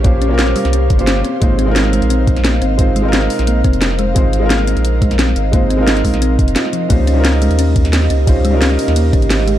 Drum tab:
RD |----------------|----------------|----------------|----------------|
HH |x-x-x-oxx-xxx-x-|x-x-x-xxx-xxx-x-|x-x-x-oxx-xxx-x-|x-x-x-xxx-xxx-x-|
SD |----oo-o----oo--|----oo-----ooo--|----oo-o----oo--|----oo-----ooo--|
BD |o---------o-----|o---------o-----|o---------o-----|o---------o-----|

RD |----------------|x-x-x-x-x-x-x-x-|x-x-x-x-x-x-x-x-|
HH |x-x-xxoxx-xxx-x-|x-x-x-xxx-xxx-x-|x-x-x-oxx-xxx-x-|
SD |----oo-o----oo--|----oo-----ooo--|----oo-o----oo--|
BD |o-----o---o-----|o---------o-----|o---------o-----|